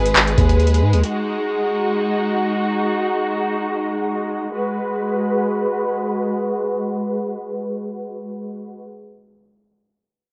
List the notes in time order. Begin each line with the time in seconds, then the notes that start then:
Already playing: G#1 G#3 G#4 B4
0.06 closed hi-hat
0.16 clap, closed hi-hat
0.27 closed hi-hat
0.38 D#2, kick, closed hi-hat
0.49 closed hi-hat
0.60 closed hi-hat
0.67 closed hi-hat
0.74 closed hi-hat
0.81 G#2
0.93 D#2, closed hi-hat
1.03 D#4 F#4, closed hi-hat
4.54 G#3 F#4 B4